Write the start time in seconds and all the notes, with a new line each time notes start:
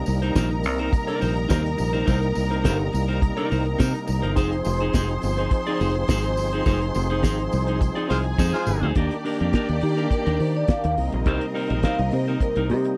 Already playing: C3 G3 A#3 D#4 A#4 A#5
0.06 C2, muted clean electric guitar stroke, open hi-hat, tambourine
0.22 D#4 A#4 C5, closed hi-hat
0.35 A#1 D#4 A#4 C5, kick, snare, closed hi-hat, tambourine
0.51 muted clean electric guitar stroke, closed hi-hat
0.63 C2, muted clean electric guitar stroke, open hi-hat, tambourine
0.79 D#4 A#4 C5, closed hi-hat
0.93 muted clean electric guitar stroke, kick, closed hi-hat, tambourine
1.07 D#4 A#4 D5, closed hi-hat
1.20 A#1 D#4 A#4 C5, open hi-hat, tambourine
1.36 muted clean electric guitar stroke, closed hi-hat
1.49 D#2 D#4 A#4 C5, kick, snare, closed hi-hat, tambourine
1.64 muted clean electric guitar stroke, closed hi-hat
1.78 A#1, muted clean electric guitar stroke, open hi-hat, tambourine
1.93 D#4 A#4 C5, closed hi-hat
2.06 C2 D#4 A#4 C5, kick, closed hi-hat, tambourine
2.21 muted clean electric guitar stroke, closed hi-hat
2.35 C2, muted clean electric guitar stroke, open hi-hat, tambourine
2.50 D#4 A#4 C5, closed hi-hat
2.64 G1 D#4 A#4 C5, kick, snare, closed hi-hat, tambourine
2.79 muted clean electric guitar stroke, closed hi-hat
2.92 C2, muted clean electric guitar stroke, open hi-hat, tambourine
3.08 D#4 A#4 C5, snare, closed hi-hat
3.22 muted clean electric guitar stroke, kick, closed hi-hat
3.37 D#4 A#4 D5, closed hi-hat
3.50 C2 D#4 A#4 C5, open hi-hat, tambourine
3.66 muted clean electric guitar stroke, closed hi-hat
3.79 C3 D#4 A#4 C5, kick, snare, closed hi-hat, tambourine
3.94 muted clean electric guitar stroke, closed hi-hat
4.07 C2, muted clean electric guitar stroke, open hi-hat, tambourine
4.22 G1 D#4 A#4 C5, closed hi-hat
4.36 F1 F3 C4 D#4 G#4 C5 C6, kick, closed hi-hat, tambourine
4.52 muted clean electric guitar stroke, closed hi-hat
4.65 F1, muted clean electric guitar stroke, open hi-hat, tambourine
4.80 D#4 G#4 C5, closed hi-hat
4.93 F1 D#4 G#4 C5, kick, snare, closed hi-hat, tambourine
5.09 muted clean electric guitar stroke, closed hi-hat
5.22 G1, muted clean electric guitar stroke, open hi-hat, tambourine
5.37 D#4 G#4 C5, closed hi-hat
5.51 muted clean electric guitar stroke, kick, closed hi-hat
5.66 D#4 G#4 D5, closed hi-hat
5.80 F1 D#4 G#4 C5, open hi-hat, tambourine
5.95 muted clean electric guitar stroke, closed hi-hat
6.08 G#1 D#4 G#4 C5, kick, snare, closed hi-hat, tambourine
6.24 muted clean electric guitar stroke, closed hi-hat
6.37 G1, muted clean electric guitar stroke, open hi-hat, tambourine
6.53 D#4 G#4 C5, closed hi-hat
6.66 F1 D#4 G#4 C5, kick, closed hi-hat, tambourine
6.81 muted clean electric guitar stroke, closed hi-hat
6.94 F1, muted clean electric guitar stroke, open hi-hat, tambourine
7.10 D#4 G#4 C5, closed hi-hat
7.23 G#1 D#4 G#4 C5, kick, snare, closed hi-hat, tambourine
7.39 muted clean electric guitar stroke, closed hi-hat
7.52 C2, muted clean electric guitar stroke, open hi-hat, tambourine
7.67 D#4 G#4 C5, closed hi-hat
7.81 muted clean electric guitar stroke, kick, closed hi-hat, tambourine
7.95 D#4 G#4 D5, closed hi-hat
8.09 C2 G#3 D#4 F4 G#4 C5 G#5, open hi-hat, tambourine
8.24 muted clean electric guitar stroke, closed hi-hat
8.38 F2 D#4 G#4 C5, kick, snare, tambourine
8.53 G#3 F4 C5, muted clean electric guitar stroke, high tom
8.67 G1, muted clean electric guitar stroke, mid tom, tambourine
8.82 D2 D#4 G#4 C5, floor tom
8.95 D#2 D#3 A#3 D4 G4 A#4 D5, kick, closed hi-hat
9.11 closed hi-hat
9.25 D4 G4 A#4, open hi-hat
9.40 F2 D4 G4 A#4, closed hi-hat
9.53 D4 G4 A#4, kick, snare, closed hi-hat
9.69 D#2, muted clean electric guitar stroke, closed hi-hat
9.81 D#3 G4, muted clean electric guitar stroke, open hi-hat
9.97 D4 G4 A#4, snare, closed hi-hat
10.11 A#4, muted clean electric guitar stroke, kick, closed hi-hat
10.26 D#2 D4 G4 A#4, closed hi-hat
10.39 D#3 C5, muted clean electric guitar stroke, open hi-hat
10.55 D5, muted clean electric guitar stroke, closed hi-hat
10.68 F5, muted clean electric guitar stroke, kick, snare, closed hi-hat
10.84 D#2, muted clean electric guitar stroke, closed hi-hat
10.97 C2 C3 G3 C4 D#4 A#4 D#5, open hi-hat
11.13 A#1, muted clean electric guitar stroke, closed hi-hat
11.26 C2 D#4 A#4 C5, kick, closed hi-hat
11.41 closed hi-hat
11.54 D#4 A#4 C5, open hi-hat
11.69 A#1 D#4 A#4 C5, closed hi-hat
11.83 D#4 A#4 C5 F5, kick, snare, closed hi-hat
11.98 C2 D#5, muted clean electric guitar stroke, closed hi-hat
12.11 C3 C5, muted clean electric guitar stroke, open hi-hat
12.27 D#4 A#4 C5, snare, closed hi-hat
12.40 A#4, muted clean electric guitar stroke, kick, closed hi-hat
12.56 C2 D#4 A#4 C5, closed hi-hat
12.70 C3 G4, muted clean electric guitar stroke, open hi-hat
12.85 muted clean electric guitar stroke, closed hi-hat